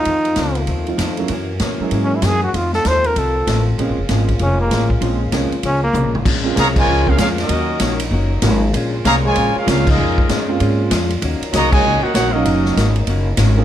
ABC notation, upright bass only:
X:1
M:4/4
L:1/8
Q:"Swing" 1/4=194
K:Bbm
V:1 name="Upright bass" clef=bass
F,,2 D,,2 E,,2 F,,2 | G,,2 B,, z A,,2 G,,2 | F,,2 E,,2 C,,2 =A,,,2 | (3B,,, A,,, F,,, A,,,2 F,,,2 =A,,,2 |
B,,,2 C,, z D,,2 (3C,, B,,, A,,, | B,,,2 C,,2 D,,2 F,,2 | E,,2 B,,,2 G,,,2 A,,,2 | B,,,2 C,,2 B,,, z D,,2 |
F,,2 G,,2 A,,2 F,,2 | E,, z C,,2 D,, z B,,,2 | G,,,2 A,,,2 G,,,2 A,,,2 |]